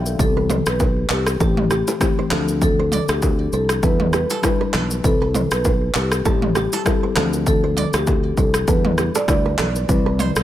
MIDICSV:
0, 0, Header, 1, 6, 480
1, 0, Start_track
1, 0, Key_signature, 0, "major"
1, 0, Tempo, 606061
1, 154, Time_signature, 4, 2, 24, 8
1, 8261, End_track
2, 0, Start_track
2, 0, Title_t, "Nylon-string guitar"
2, 0, Program_c, 0, 24
2, 292, Note_on_c, 0, 71, 78
2, 356, Note_off_c, 0, 71, 0
2, 400, Note_on_c, 0, 72, 80
2, 479, Note_off_c, 0, 72, 0
2, 880, Note_on_c, 0, 71, 71
2, 959, Note_off_c, 0, 71, 0
2, 1120, Note_on_c, 0, 69, 86
2, 1198, Note_off_c, 0, 69, 0
2, 1360, Note_on_c, 0, 67, 82
2, 1439, Note_off_c, 0, 67, 0
2, 1493, Note_on_c, 0, 69, 81
2, 1556, Note_off_c, 0, 69, 0
2, 1732, Note_on_c, 0, 72, 80
2, 1796, Note_off_c, 0, 72, 0
2, 1841, Note_on_c, 0, 69, 76
2, 1919, Note_off_c, 0, 69, 0
2, 2213, Note_on_c, 0, 72, 78
2, 2320, Note_off_c, 0, 72, 0
2, 2320, Note_on_c, 0, 74, 78
2, 2398, Note_off_c, 0, 74, 0
2, 2799, Note_on_c, 0, 72, 72
2, 2878, Note_off_c, 0, 72, 0
2, 3037, Note_on_c, 0, 69, 84
2, 3117, Note_off_c, 0, 69, 0
2, 3278, Note_on_c, 0, 67, 85
2, 3410, Note_off_c, 0, 67, 0
2, 3410, Note_on_c, 0, 69, 84
2, 3474, Note_off_c, 0, 69, 0
2, 3650, Note_on_c, 0, 71, 79
2, 3758, Note_off_c, 0, 71, 0
2, 3758, Note_on_c, 0, 69, 78
2, 3837, Note_off_c, 0, 69, 0
2, 4132, Note_on_c, 0, 71, 84
2, 4196, Note_off_c, 0, 71, 0
2, 4241, Note_on_c, 0, 72, 82
2, 4319, Note_off_c, 0, 72, 0
2, 4719, Note_on_c, 0, 71, 75
2, 4798, Note_off_c, 0, 71, 0
2, 4959, Note_on_c, 0, 69, 86
2, 5038, Note_off_c, 0, 69, 0
2, 5201, Note_on_c, 0, 67, 80
2, 5332, Note_off_c, 0, 67, 0
2, 5332, Note_on_c, 0, 69, 79
2, 5396, Note_off_c, 0, 69, 0
2, 5570, Note_on_c, 0, 72, 78
2, 5634, Note_off_c, 0, 72, 0
2, 5676, Note_on_c, 0, 69, 82
2, 5756, Note_off_c, 0, 69, 0
2, 6049, Note_on_c, 0, 72, 81
2, 6158, Note_off_c, 0, 72, 0
2, 6158, Note_on_c, 0, 74, 79
2, 6237, Note_off_c, 0, 74, 0
2, 6639, Note_on_c, 0, 72, 72
2, 6718, Note_off_c, 0, 72, 0
2, 6879, Note_on_c, 0, 69, 82
2, 6958, Note_off_c, 0, 69, 0
2, 7119, Note_on_c, 0, 67, 81
2, 7198, Note_off_c, 0, 67, 0
2, 7252, Note_on_c, 0, 69, 83
2, 7316, Note_off_c, 0, 69, 0
2, 7490, Note_on_c, 0, 71, 79
2, 7554, Note_off_c, 0, 71, 0
2, 7597, Note_on_c, 0, 69, 75
2, 7676, Note_off_c, 0, 69, 0
2, 7969, Note_on_c, 0, 71, 80
2, 8078, Note_off_c, 0, 71, 0
2, 8078, Note_on_c, 0, 72, 80
2, 8157, Note_off_c, 0, 72, 0
2, 8261, End_track
3, 0, Start_track
3, 0, Title_t, "Marimba"
3, 0, Program_c, 1, 12
3, 163, Note_on_c, 1, 69, 84
3, 363, Note_off_c, 1, 69, 0
3, 539, Note_on_c, 1, 71, 72
3, 625, Note_off_c, 1, 71, 0
3, 884, Note_on_c, 1, 67, 83
3, 991, Note_off_c, 1, 67, 0
3, 1120, Note_on_c, 1, 67, 80
3, 1229, Note_off_c, 1, 67, 0
3, 1363, Note_on_c, 1, 67, 83
3, 1471, Note_off_c, 1, 67, 0
3, 2085, Note_on_c, 1, 69, 100
3, 2284, Note_off_c, 1, 69, 0
3, 2454, Note_on_c, 1, 67, 80
3, 2542, Note_off_c, 1, 67, 0
3, 2803, Note_on_c, 1, 69, 76
3, 2911, Note_off_c, 1, 69, 0
3, 3042, Note_on_c, 1, 71, 81
3, 3151, Note_off_c, 1, 71, 0
3, 3282, Note_on_c, 1, 71, 75
3, 3391, Note_off_c, 1, 71, 0
3, 4004, Note_on_c, 1, 69, 96
3, 4204, Note_off_c, 1, 69, 0
3, 4375, Note_on_c, 1, 71, 82
3, 4463, Note_off_c, 1, 71, 0
3, 4726, Note_on_c, 1, 67, 82
3, 4833, Note_off_c, 1, 67, 0
3, 4965, Note_on_c, 1, 67, 80
3, 5072, Note_off_c, 1, 67, 0
3, 5205, Note_on_c, 1, 67, 83
3, 5312, Note_off_c, 1, 67, 0
3, 5924, Note_on_c, 1, 69, 95
3, 6124, Note_off_c, 1, 69, 0
3, 6299, Note_on_c, 1, 67, 89
3, 6385, Note_off_c, 1, 67, 0
3, 6645, Note_on_c, 1, 69, 76
3, 6752, Note_off_c, 1, 69, 0
3, 6883, Note_on_c, 1, 71, 74
3, 6991, Note_off_c, 1, 71, 0
3, 7252, Note_on_c, 1, 74, 83
3, 7341, Note_off_c, 1, 74, 0
3, 7362, Note_on_c, 1, 74, 84
3, 7708, Note_off_c, 1, 74, 0
3, 8261, End_track
4, 0, Start_track
4, 0, Title_t, "FM electric piano"
4, 0, Program_c, 2, 5
4, 0, Control_c, 2, 64, 127
4, 0, Note_on_c, 2, 52, 84
4, 0, Note_on_c, 2, 59, 82
4, 0, Note_on_c, 2, 62, 78
4, 0, Note_on_c, 2, 67, 92
4, 0, Note_on_c, 2, 69, 97
4, 0, Note_on_c, 2, 74, 73
4, 0, Note_on_c, 2, 76, 72
4, 0, Note_on_c, 2, 77, 68
4, 0, Note_on_c, 2, 79, 70
4, 134, Note_off_c, 2, 79, 0
4, 141, Note_off_c, 2, 52, 0
4, 141, Note_on_c, 2, 52, 73
4, 147, Note_off_c, 2, 59, 0
4, 147, Note_on_c, 2, 59, 67
4, 154, Note_on_c, 2, 60, 68
4, 160, Note_off_c, 2, 67, 0
4, 160, Note_on_c, 2, 67, 79
4, 164, Note_off_c, 2, 77, 0
4, 164, Control_c, 2, 64, 0
4, 165, Note_off_c, 2, 69, 0
4, 165, Note_off_c, 2, 76, 0
4, 166, Note_off_c, 2, 74, 0
4, 169, Note_off_c, 2, 62, 0
4, 324, Control_c, 2, 64, 127
4, 814, Note_off_c, 2, 52, 0
4, 817, Note_off_c, 2, 59, 0
4, 820, Note_off_c, 2, 60, 0
4, 824, Note_off_c, 2, 67, 0
4, 1102, Note_on_c, 2, 52, 73
4, 1108, Note_on_c, 2, 57, 67
4, 1115, Note_on_c, 2, 60, 65
4, 1121, Note_on_c, 2, 67, 82
4, 1123, Control_c, 2, 64, 0
4, 1249, Control_c, 2, 64, 127
4, 1447, Note_off_c, 2, 52, 0
4, 1450, Note_off_c, 2, 57, 0
4, 1454, Note_off_c, 2, 60, 0
4, 1457, Note_off_c, 2, 67, 0
4, 1580, Note_on_c, 2, 52, 88
4, 1586, Note_on_c, 2, 57, 75
4, 1593, Note_on_c, 2, 60, 79
4, 1600, Note_on_c, 2, 67, 94
4, 1818, Note_off_c, 2, 60, 0
4, 1821, Note_on_c, 2, 53, 94
4, 1827, Note_off_c, 2, 52, 0
4, 1827, Note_on_c, 2, 60, 88
4, 1830, Note_off_c, 2, 57, 0
4, 1835, Note_on_c, 2, 62, 88
4, 1837, Note_off_c, 2, 67, 0
4, 1841, Note_on_c, 2, 69, 103
4, 1843, Control_c, 2, 64, 0
4, 1964, Control_c, 2, 64, 127
4, 2600, Note_off_c, 2, 53, 0
4, 2603, Note_off_c, 2, 60, 0
4, 2607, Note_off_c, 2, 62, 0
4, 2610, Note_off_c, 2, 69, 0
4, 3022, Note_on_c, 2, 55, 73
4, 3029, Note_on_c, 2, 62, 67
4, 3035, Note_on_c, 2, 64, 67
4, 3041, Note_on_c, 2, 71, 81
4, 3045, Control_c, 2, 64, 0
4, 3200, Control_c, 2, 64, 127
4, 3367, Note_off_c, 2, 55, 0
4, 3371, Note_off_c, 2, 62, 0
4, 3374, Note_off_c, 2, 64, 0
4, 3377, Note_off_c, 2, 71, 0
4, 3501, Note_on_c, 2, 55, 88
4, 3509, Note_on_c, 2, 62, 75
4, 3515, Note_on_c, 2, 64, 75
4, 3522, Note_on_c, 2, 71, 93
4, 3847, Note_off_c, 2, 55, 0
4, 3851, Note_off_c, 2, 62, 0
4, 3854, Note_off_c, 2, 64, 0
4, 3857, Note_off_c, 2, 71, 0
4, 3982, Note_on_c, 2, 55, 72
4, 3990, Note_on_c, 2, 60, 66
4, 3995, Note_on_c, 2, 64, 67
4, 4002, Note_on_c, 2, 71, 82
4, 4004, Control_c, 2, 64, 0
4, 4129, Control_c, 2, 64, 127
4, 4654, Note_off_c, 2, 55, 0
4, 4658, Note_off_c, 2, 60, 0
4, 4661, Note_off_c, 2, 64, 0
4, 4664, Note_off_c, 2, 71, 0
4, 4943, Note_on_c, 2, 55, 74
4, 4950, Note_on_c, 2, 60, 67
4, 4957, Note_on_c, 2, 64, 68
4, 4963, Note_on_c, 2, 69, 80
4, 4964, Control_c, 2, 64, 0
4, 5097, Control_c, 2, 64, 127
4, 5288, Note_off_c, 2, 55, 0
4, 5291, Note_off_c, 2, 60, 0
4, 5294, Note_off_c, 2, 64, 0
4, 5298, Note_off_c, 2, 69, 0
4, 5423, Note_on_c, 2, 55, 86
4, 5430, Note_on_c, 2, 60, 75
4, 5436, Note_on_c, 2, 64, 80
4, 5443, Note_on_c, 2, 69, 93
4, 5661, Note_off_c, 2, 60, 0
4, 5663, Note_on_c, 2, 53, 98
4, 5668, Note_off_c, 2, 55, 0
4, 5671, Note_on_c, 2, 60, 93
4, 5674, Note_off_c, 2, 69, 0
4, 5675, Note_off_c, 2, 64, 0
4, 5677, Note_on_c, 2, 62, 87
4, 5684, Note_on_c, 2, 69, 103
4, 5685, Control_c, 2, 64, 0
4, 5805, Control_c, 2, 64, 127
4, 6441, Note_off_c, 2, 53, 0
4, 6445, Note_off_c, 2, 60, 0
4, 6448, Note_off_c, 2, 62, 0
4, 6451, Note_off_c, 2, 69, 0
4, 6861, Note_on_c, 2, 55, 71
4, 6867, Note_on_c, 2, 62, 64
4, 6874, Note_on_c, 2, 64, 68
4, 6881, Control_c, 2, 64, 0
4, 6882, Note_on_c, 2, 71, 81
4, 7034, Control_c, 2, 64, 127
4, 7207, Note_off_c, 2, 55, 0
4, 7210, Note_off_c, 2, 62, 0
4, 7213, Note_off_c, 2, 64, 0
4, 7217, Note_off_c, 2, 71, 0
4, 7342, Note_on_c, 2, 55, 70
4, 7350, Note_on_c, 2, 62, 64
4, 7357, Note_on_c, 2, 64, 62
4, 7363, Note_on_c, 2, 71, 76
4, 7687, Note_off_c, 2, 55, 0
4, 7691, Note_off_c, 2, 62, 0
4, 7695, Note_off_c, 2, 64, 0
4, 7698, Note_off_c, 2, 71, 0
4, 7823, Note_on_c, 2, 55, 90
4, 7829, Note_on_c, 2, 60, 77
4, 7835, Note_on_c, 2, 64, 80
4, 7842, Note_on_c, 2, 71, 96
4, 7845, Control_c, 2, 64, 0
4, 7981, Control_c, 2, 64, 127
4, 8261, Note_off_c, 2, 55, 0
4, 8261, Note_off_c, 2, 60, 0
4, 8261, Note_off_c, 2, 64, 0
4, 8261, Note_off_c, 2, 71, 0
4, 8261, End_track
5, 0, Start_track
5, 0, Title_t, "Fingered electric bass"
5, 0, Program_c, 3, 33
5, 0, Note_on_c, 3, 35, 84
5, 120, Note_off_c, 3, 35, 0
5, 153, Note_on_c, 3, 36, 105
5, 474, Note_off_c, 3, 36, 0
5, 525, Note_on_c, 3, 35, 91
5, 825, Note_off_c, 3, 35, 0
5, 872, Note_on_c, 3, 36, 92
5, 1079, Note_off_c, 3, 36, 0
5, 1112, Note_on_c, 3, 33, 112
5, 1433, Note_off_c, 3, 33, 0
5, 1831, Note_on_c, 3, 38, 102
5, 2359, Note_off_c, 3, 38, 0
5, 2445, Note_on_c, 3, 38, 92
5, 2745, Note_off_c, 3, 38, 0
5, 2793, Note_on_c, 3, 36, 92
5, 3000, Note_off_c, 3, 36, 0
5, 3033, Note_on_c, 3, 40, 102
5, 3354, Note_off_c, 3, 40, 0
5, 3753, Note_on_c, 3, 35, 91
5, 3960, Note_off_c, 3, 35, 0
5, 3993, Note_on_c, 3, 36, 109
5, 4314, Note_off_c, 3, 36, 0
5, 4366, Note_on_c, 3, 35, 90
5, 4665, Note_off_c, 3, 35, 0
5, 4714, Note_on_c, 3, 36, 92
5, 4921, Note_off_c, 3, 36, 0
5, 4954, Note_on_c, 3, 33, 115
5, 5274, Note_off_c, 3, 33, 0
5, 5673, Note_on_c, 3, 38, 102
5, 6200, Note_off_c, 3, 38, 0
5, 6285, Note_on_c, 3, 38, 86
5, 6585, Note_off_c, 3, 38, 0
5, 6634, Note_on_c, 3, 36, 91
5, 6840, Note_off_c, 3, 36, 0
5, 6873, Note_on_c, 3, 40, 109
5, 7193, Note_off_c, 3, 40, 0
5, 7351, Note_on_c, 3, 38, 89
5, 7558, Note_off_c, 3, 38, 0
5, 7592, Note_on_c, 3, 35, 94
5, 7799, Note_off_c, 3, 35, 0
5, 7832, Note_on_c, 3, 36, 114
5, 8153, Note_off_c, 3, 36, 0
5, 8203, Note_on_c, 3, 35, 90
5, 8261, Note_off_c, 3, 35, 0
5, 8261, End_track
6, 0, Start_track
6, 0, Title_t, "Drums"
6, 47, Note_on_c, 9, 82, 64
6, 49, Note_on_c, 9, 60, 46
6, 126, Note_off_c, 9, 82, 0
6, 128, Note_off_c, 9, 60, 0
6, 153, Note_on_c, 9, 36, 107
6, 154, Note_on_c, 9, 82, 73
6, 157, Note_on_c, 9, 64, 76
6, 233, Note_off_c, 9, 36, 0
6, 234, Note_off_c, 9, 82, 0
6, 236, Note_off_c, 9, 64, 0
6, 392, Note_on_c, 9, 45, 93
6, 396, Note_on_c, 9, 82, 70
6, 472, Note_off_c, 9, 45, 0
6, 475, Note_off_c, 9, 82, 0
6, 524, Note_on_c, 9, 82, 72
6, 529, Note_on_c, 9, 37, 118
6, 603, Note_off_c, 9, 82, 0
6, 608, Note_off_c, 9, 37, 0
6, 630, Note_on_c, 9, 82, 66
6, 634, Note_on_c, 9, 36, 101
6, 639, Note_on_c, 9, 60, 75
6, 710, Note_off_c, 9, 82, 0
6, 713, Note_off_c, 9, 36, 0
6, 718, Note_off_c, 9, 60, 0
6, 866, Note_on_c, 9, 39, 86
6, 871, Note_on_c, 9, 82, 48
6, 945, Note_off_c, 9, 39, 0
6, 950, Note_off_c, 9, 82, 0
6, 1002, Note_on_c, 9, 37, 103
6, 1005, Note_on_c, 9, 82, 73
6, 1081, Note_off_c, 9, 37, 0
6, 1084, Note_off_c, 9, 82, 0
6, 1112, Note_on_c, 9, 82, 69
6, 1113, Note_on_c, 9, 36, 118
6, 1115, Note_on_c, 9, 64, 78
6, 1191, Note_off_c, 9, 82, 0
6, 1192, Note_off_c, 9, 36, 0
6, 1195, Note_off_c, 9, 64, 0
6, 1246, Note_on_c, 9, 45, 100
6, 1325, Note_off_c, 9, 45, 0
6, 1351, Note_on_c, 9, 37, 90
6, 1351, Note_on_c, 9, 82, 54
6, 1430, Note_off_c, 9, 37, 0
6, 1430, Note_off_c, 9, 82, 0
6, 1485, Note_on_c, 9, 82, 78
6, 1487, Note_on_c, 9, 61, 89
6, 1564, Note_off_c, 9, 82, 0
6, 1566, Note_off_c, 9, 61, 0
6, 1590, Note_on_c, 9, 36, 99
6, 1592, Note_on_c, 9, 37, 86
6, 1592, Note_on_c, 9, 82, 68
6, 1597, Note_on_c, 9, 60, 77
6, 1597, Note_on_c, 9, 61, 77
6, 1669, Note_off_c, 9, 36, 0
6, 1671, Note_off_c, 9, 37, 0
6, 1671, Note_off_c, 9, 82, 0
6, 1676, Note_off_c, 9, 60, 0
6, 1676, Note_off_c, 9, 61, 0
6, 1829, Note_on_c, 9, 37, 80
6, 1829, Note_on_c, 9, 39, 81
6, 1830, Note_on_c, 9, 82, 51
6, 1837, Note_on_c, 9, 64, 85
6, 1908, Note_off_c, 9, 37, 0
6, 1908, Note_off_c, 9, 39, 0
6, 1910, Note_off_c, 9, 82, 0
6, 1917, Note_off_c, 9, 64, 0
6, 1965, Note_on_c, 9, 82, 66
6, 1969, Note_on_c, 9, 60, 49
6, 2045, Note_off_c, 9, 82, 0
6, 2048, Note_off_c, 9, 60, 0
6, 2072, Note_on_c, 9, 36, 112
6, 2072, Note_on_c, 9, 82, 72
6, 2079, Note_on_c, 9, 64, 77
6, 2151, Note_off_c, 9, 36, 0
6, 2151, Note_off_c, 9, 82, 0
6, 2158, Note_off_c, 9, 64, 0
6, 2311, Note_on_c, 9, 45, 94
6, 2314, Note_on_c, 9, 82, 67
6, 2390, Note_off_c, 9, 45, 0
6, 2393, Note_off_c, 9, 82, 0
6, 2443, Note_on_c, 9, 82, 70
6, 2449, Note_on_c, 9, 37, 127
6, 2522, Note_off_c, 9, 82, 0
6, 2528, Note_off_c, 9, 37, 0
6, 2551, Note_on_c, 9, 82, 69
6, 2554, Note_on_c, 9, 36, 95
6, 2560, Note_on_c, 9, 60, 79
6, 2630, Note_off_c, 9, 82, 0
6, 2633, Note_off_c, 9, 36, 0
6, 2639, Note_off_c, 9, 60, 0
6, 2792, Note_on_c, 9, 82, 45
6, 2871, Note_off_c, 9, 82, 0
6, 2924, Note_on_c, 9, 37, 101
6, 2926, Note_on_c, 9, 82, 68
6, 3003, Note_off_c, 9, 37, 0
6, 3005, Note_off_c, 9, 82, 0
6, 3033, Note_on_c, 9, 82, 71
6, 3034, Note_on_c, 9, 36, 123
6, 3037, Note_on_c, 9, 64, 78
6, 3112, Note_off_c, 9, 82, 0
6, 3113, Note_off_c, 9, 36, 0
6, 3116, Note_off_c, 9, 64, 0
6, 3166, Note_on_c, 9, 45, 96
6, 3245, Note_off_c, 9, 45, 0
6, 3271, Note_on_c, 9, 37, 92
6, 3271, Note_on_c, 9, 82, 54
6, 3350, Note_off_c, 9, 82, 0
6, 3351, Note_off_c, 9, 37, 0
6, 3406, Note_on_c, 9, 82, 80
6, 3409, Note_on_c, 9, 61, 85
6, 3485, Note_off_c, 9, 82, 0
6, 3489, Note_off_c, 9, 61, 0
6, 3511, Note_on_c, 9, 36, 92
6, 3512, Note_on_c, 9, 82, 67
6, 3513, Note_on_c, 9, 37, 91
6, 3520, Note_on_c, 9, 60, 78
6, 3520, Note_on_c, 9, 61, 80
6, 3590, Note_off_c, 9, 36, 0
6, 3591, Note_off_c, 9, 82, 0
6, 3592, Note_off_c, 9, 37, 0
6, 3599, Note_off_c, 9, 60, 0
6, 3599, Note_off_c, 9, 61, 0
6, 3750, Note_on_c, 9, 37, 82
6, 3750, Note_on_c, 9, 39, 81
6, 3752, Note_on_c, 9, 82, 50
6, 3759, Note_on_c, 9, 64, 87
6, 3830, Note_off_c, 9, 37, 0
6, 3830, Note_off_c, 9, 39, 0
6, 3831, Note_off_c, 9, 82, 0
6, 3838, Note_off_c, 9, 64, 0
6, 3886, Note_on_c, 9, 82, 66
6, 3890, Note_on_c, 9, 60, 48
6, 3966, Note_off_c, 9, 82, 0
6, 3969, Note_off_c, 9, 60, 0
6, 3993, Note_on_c, 9, 82, 74
6, 3994, Note_on_c, 9, 36, 112
6, 4001, Note_on_c, 9, 64, 74
6, 4073, Note_off_c, 9, 36, 0
6, 4073, Note_off_c, 9, 82, 0
6, 4081, Note_off_c, 9, 64, 0
6, 4233, Note_on_c, 9, 45, 95
6, 4236, Note_on_c, 9, 82, 68
6, 4312, Note_off_c, 9, 45, 0
6, 4315, Note_off_c, 9, 82, 0
6, 4364, Note_on_c, 9, 82, 72
6, 4369, Note_on_c, 9, 37, 119
6, 4443, Note_off_c, 9, 82, 0
6, 4449, Note_off_c, 9, 37, 0
6, 4471, Note_on_c, 9, 82, 68
6, 4475, Note_on_c, 9, 36, 100
6, 4480, Note_on_c, 9, 60, 78
6, 4550, Note_off_c, 9, 82, 0
6, 4554, Note_off_c, 9, 36, 0
6, 4560, Note_off_c, 9, 60, 0
6, 4707, Note_on_c, 9, 39, 89
6, 4711, Note_on_c, 9, 82, 46
6, 4786, Note_off_c, 9, 39, 0
6, 4791, Note_off_c, 9, 82, 0
6, 4844, Note_on_c, 9, 37, 98
6, 4846, Note_on_c, 9, 82, 73
6, 4923, Note_off_c, 9, 37, 0
6, 4925, Note_off_c, 9, 82, 0
6, 4953, Note_on_c, 9, 82, 73
6, 4954, Note_on_c, 9, 36, 117
6, 4959, Note_on_c, 9, 64, 78
6, 5032, Note_off_c, 9, 82, 0
6, 5033, Note_off_c, 9, 36, 0
6, 5038, Note_off_c, 9, 64, 0
6, 5087, Note_on_c, 9, 45, 99
6, 5166, Note_off_c, 9, 45, 0
6, 5190, Note_on_c, 9, 37, 94
6, 5190, Note_on_c, 9, 82, 55
6, 5269, Note_off_c, 9, 37, 0
6, 5269, Note_off_c, 9, 82, 0
6, 5327, Note_on_c, 9, 82, 79
6, 5330, Note_on_c, 9, 61, 85
6, 5406, Note_off_c, 9, 82, 0
6, 5410, Note_off_c, 9, 61, 0
6, 5431, Note_on_c, 9, 36, 100
6, 5433, Note_on_c, 9, 37, 91
6, 5433, Note_on_c, 9, 82, 72
6, 5441, Note_on_c, 9, 60, 77
6, 5441, Note_on_c, 9, 61, 76
6, 5510, Note_off_c, 9, 36, 0
6, 5512, Note_off_c, 9, 82, 0
6, 5513, Note_off_c, 9, 37, 0
6, 5520, Note_off_c, 9, 60, 0
6, 5520, Note_off_c, 9, 61, 0
6, 5672, Note_on_c, 9, 37, 84
6, 5672, Note_on_c, 9, 39, 80
6, 5673, Note_on_c, 9, 82, 50
6, 5681, Note_on_c, 9, 64, 89
6, 5751, Note_off_c, 9, 37, 0
6, 5751, Note_off_c, 9, 39, 0
6, 5752, Note_off_c, 9, 82, 0
6, 5760, Note_off_c, 9, 64, 0
6, 5806, Note_on_c, 9, 82, 65
6, 5812, Note_on_c, 9, 60, 49
6, 5886, Note_off_c, 9, 82, 0
6, 5892, Note_off_c, 9, 60, 0
6, 5913, Note_on_c, 9, 36, 114
6, 5913, Note_on_c, 9, 82, 75
6, 5922, Note_on_c, 9, 64, 79
6, 5992, Note_off_c, 9, 36, 0
6, 5992, Note_off_c, 9, 82, 0
6, 6001, Note_off_c, 9, 64, 0
6, 6151, Note_on_c, 9, 45, 90
6, 6155, Note_on_c, 9, 82, 66
6, 6231, Note_off_c, 9, 45, 0
6, 6234, Note_off_c, 9, 82, 0
6, 6283, Note_on_c, 9, 82, 73
6, 6288, Note_on_c, 9, 37, 126
6, 6296, Note_on_c, 9, 61, 73
6, 6362, Note_off_c, 9, 82, 0
6, 6367, Note_off_c, 9, 37, 0
6, 6376, Note_off_c, 9, 61, 0
6, 6389, Note_on_c, 9, 82, 64
6, 6394, Note_on_c, 9, 36, 97
6, 6401, Note_on_c, 9, 60, 76
6, 6469, Note_off_c, 9, 82, 0
6, 6473, Note_off_c, 9, 36, 0
6, 6480, Note_off_c, 9, 60, 0
6, 6631, Note_on_c, 9, 82, 46
6, 6633, Note_on_c, 9, 36, 84
6, 6710, Note_off_c, 9, 82, 0
6, 6712, Note_off_c, 9, 36, 0
6, 6763, Note_on_c, 9, 37, 100
6, 6765, Note_on_c, 9, 82, 72
6, 6842, Note_off_c, 9, 37, 0
6, 6845, Note_off_c, 9, 82, 0
6, 6872, Note_on_c, 9, 82, 75
6, 6873, Note_on_c, 9, 36, 117
6, 6877, Note_on_c, 9, 64, 83
6, 6951, Note_off_c, 9, 82, 0
6, 6952, Note_off_c, 9, 36, 0
6, 6956, Note_off_c, 9, 64, 0
6, 7006, Note_on_c, 9, 45, 104
6, 7085, Note_off_c, 9, 45, 0
6, 7111, Note_on_c, 9, 37, 91
6, 7111, Note_on_c, 9, 82, 55
6, 7190, Note_off_c, 9, 37, 0
6, 7190, Note_off_c, 9, 82, 0
6, 7246, Note_on_c, 9, 82, 79
6, 7250, Note_on_c, 9, 61, 87
6, 7325, Note_off_c, 9, 82, 0
6, 7329, Note_off_c, 9, 61, 0
6, 7350, Note_on_c, 9, 36, 96
6, 7353, Note_on_c, 9, 82, 73
6, 7354, Note_on_c, 9, 37, 85
6, 7360, Note_on_c, 9, 60, 76
6, 7360, Note_on_c, 9, 61, 77
6, 7430, Note_off_c, 9, 36, 0
6, 7432, Note_off_c, 9, 82, 0
6, 7433, Note_off_c, 9, 37, 0
6, 7439, Note_off_c, 9, 60, 0
6, 7439, Note_off_c, 9, 61, 0
6, 7590, Note_on_c, 9, 37, 81
6, 7590, Note_on_c, 9, 39, 86
6, 7591, Note_on_c, 9, 82, 52
6, 7599, Note_on_c, 9, 60, 62
6, 7599, Note_on_c, 9, 64, 86
6, 7669, Note_off_c, 9, 37, 0
6, 7669, Note_off_c, 9, 39, 0
6, 7671, Note_off_c, 9, 82, 0
6, 7679, Note_off_c, 9, 60, 0
6, 7679, Note_off_c, 9, 64, 0
6, 7726, Note_on_c, 9, 82, 67
6, 7729, Note_on_c, 9, 60, 52
6, 7805, Note_off_c, 9, 82, 0
6, 7809, Note_off_c, 9, 60, 0
6, 7833, Note_on_c, 9, 36, 112
6, 7833, Note_on_c, 9, 82, 73
6, 7840, Note_on_c, 9, 64, 75
6, 7912, Note_off_c, 9, 36, 0
6, 7912, Note_off_c, 9, 82, 0
6, 7919, Note_off_c, 9, 64, 0
6, 8071, Note_on_c, 9, 45, 92
6, 8075, Note_on_c, 9, 82, 66
6, 8151, Note_off_c, 9, 45, 0
6, 8154, Note_off_c, 9, 82, 0
6, 8204, Note_on_c, 9, 82, 70
6, 8209, Note_on_c, 9, 37, 119
6, 8261, Note_off_c, 9, 37, 0
6, 8261, Note_off_c, 9, 82, 0
6, 8261, End_track
0, 0, End_of_file